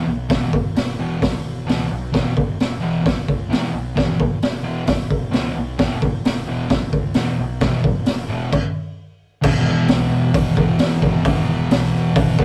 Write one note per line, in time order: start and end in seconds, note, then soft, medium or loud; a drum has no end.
0.06 0.26 B1 loud
0.29 0.50 E1 loud
0.29 0.48 E2 medium
0.29 0.48 B2 loud
0.29 0.49 E3 loud
0.29 kick loud
0.29 snare loud
0.29 open hi-hat medium
0.53 0.73 E1 medium
0.53 kick medium
0.75 0.95 E1 loud
0.75 snare loud
0.75 open hi-hat medium
0.98 1.18 E1 medium
0.98 1.17 E2 medium
0.98 1.17 B2 medium
0.98 1.18 E3 medium
1.22 1.41 E1 medium
1.22 kick loud
1.22 snare loud
1.22 open hi-hat medium
1.45 1.64 E1 medium
1.67 1.87 C#2 medium
1.67 1.85 E2 medium
1.67 1.86 B2 medium
1.67 1.86 E3 medium
1.67 snare loud
1.67 open hi-hat medium
1.91 2.10 B1 medium
2.13 2.33 E1 medium
2.13 2.31 E2 medium
2.13 2.32 B2 loud
2.13 2.32 E3 loud
2.13 kick loud
2.13 snare loud
2.13 open hi-hat medium
2.36 2.56 E1 medium
2.36 kick medium
2.60 2.79 E1 medium
2.60 snare loud
2.60 open hi-hat medium
2.80 3.01 E1 medium
2.80 2.99 E2 medium
2.80 3.00 B2 loud
2.80 3.00 E3 loud
3.05 3.24 E1 medium
3.05 kick loud
3.05 snare loud
3.05 open hi-hat medium
3.28 3.47 C#2 medium
3.28 kick medium
3.49 3.69 E2 medium
3.49 3.69 B2 medium
3.49 3.69 E3 loud
3.49 snare loud
3.49 open hi-hat medium
3.72 3.92 B1 loud
3.95 4.16 E1 medium
3.95 4.14 E2 loud
3.95 4.14 B2 medium
3.95 4.15 E3 medium
3.95 kick loud
3.95 snare loud
3.95 open hi-hat medium
4.20 4.39 E1 medium
4.20 kick medium
4.42 4.61 E1 medium
4.42 snare loud
4.42 open hi-hat medium
4.63 4.85 E1 medium
4.63 4.82 E2 medium
4.63 4.83 B2 loud
4.63 4.83 E3 loud
4.87 5.07 E1 medium
4.87 kick loud
4.87 snare loud
4.87 open hi-hat medium
5.11 5.30 E1 medium
5.11 kick medium
5.32 5.53 C#2 medium
5.32 5.51 E2 medium
5.32 5.51 B2 loud
5.32 5.51 E3 medium
5.32 snare loud
5.32 open hi-hat medium
5.56 5.75 B1 medium
5.78 5.98 E1 loud
5.78 5.97 E2 medium
5.78 5.97 B2 medium
5.78 5.97 E3 loud
5.78 kick loud
5.78 snare loud
5.78 open hi-hat medium
6.02 6.21 E1 medium
6.02 kick medium
6.24 6.43 E1 medium
6.24 snare loud
6.24 open hi-hat medium
6.46 6.66 E1 medium
6.46 6.65 E2 loud
6.46 6.66 B2 loud
6.46 6.66 E3 loud
6.70 6.90 E1 loud
6.70 kick loud
6.70 snare loud
6.70 open hi-hat medium
6.93 7.12 C#2 medium
6.93 kick medium
7.14 7.35 E2 medium
7.14 7.34 E2 medium
7.14 7.34 B2 loud
7.14 7.35 E3 loud
7.14 snare loud
7.14 open hi-hat medium
7.38 7.58 B1 medium
7.61 7.81 E1 loud
7.61 7.79 E2 medium
7.61 7.80 B2 loud
7.61 7.80 E3 loud
7.61 kick loud
7.61 snare loud
7.61 open hi-hat medium
7.84 8.03 E1 medium
7.84 kick medium
8.06 8.26 E1 medium
8.06 snare loud
8.06 open hi-hat medium
8.29 8.50 E1 medium
8.29 8.47 E2 loud
8.29 8.48 B2 loud
8.29 8.48 E3 loud
8.52 kick loud
8.52 crash medium
9.42 9.63 E1 loud
9.42 10.55 E2 medium
9.42 10.56 B2 loud
9.42 10.55 E3 medium
9.42 kick loud
9.42 crash loud
9.67 9.86 E1 medium
9.88 10.08 B1 medium
9.88 snare loud
9.88 open hi-hat medium
10.11 10.31 E1 medium
10.34 10.53 E1 medium
10.34 kick loud
10.34 open hi-hat medium
10.55 10.77 E1 medium
10.55 10.78 E2 medium
10.55 10.78 B2 medium
10.55 10.82 E3 medium
10.55 kick medium
10.79 10.99 E1 medium
10.79 11.23 E2 medium
10.79 11.24 B2 medium
10.79 11.28 E3 medium
10.79 snare loud
10.79 open hi-hat medium
11.02 11.22 E1 medium
11.02 kick medium
11.24 11.44 E1 loud
11.24 12.37 E2 medium
11.24 12.38 B2 loud
11.24 12.37 E3 loud
11.24 kick loud
11.24 open hi-hat medium
11.49 11.68 E1 medium
11.71 11.90 B1 medium
11.71 snare loud
11.71 open hi-hat medium
11.94 12.13 E1 loud
12.16 12.35 E1 medium
12.16 kick loud
12.16 open hi-hat medium
12.38 12.45 E1 medium
12.38 12.45 E2 medium
12.38 12.45 B2 medium
12.38 12.45 E3 medium
12.38 kick medium